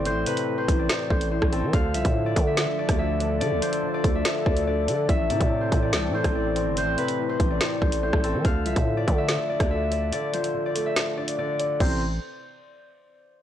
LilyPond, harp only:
\new Staff \with { instrumentName = "Harp" } { \time 4/4 \key d \dorian \tempo 4 = 143 c''8 b'8. c''8 d''16 r8 c''8 c''8 a'8 | f''8 e''8. d''8 e''16 r8 d''8 e''4 | d''8 c''8. d''8 e''16 r8 d''8 d''8 r8 | e''8 d''8. c''8 d''16 r8 c''8 d''4 |
c''8 b'8. c''8 d''16 r8 c''8 c''8 a'8 | f''8 e''8. d''8 e''16 r8 d''8 e''4 | d''8 c''8. d''8 e''16 r8 d''8 d''8 r8 | c''8 r2. r8 | }